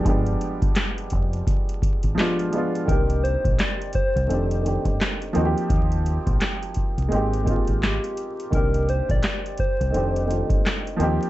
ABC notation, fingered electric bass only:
X:1
M:4/4
L:1/16
Q:"Swing 16ths" 1/4=85
K:Cm
V:1 name="Fingered electric bass" clef=bass
G,,,2 z4 F,,,2 z3 A,,, z4 | C,,3 B,,, z3 C,, F,,,3 G,,, z2 E,, z | E,,3 B,,, z3 C,, A,,,3 A,,,2 z3 | C,,3 B,,, z3 C,, F,,,3 G,,, z2 E,, z |]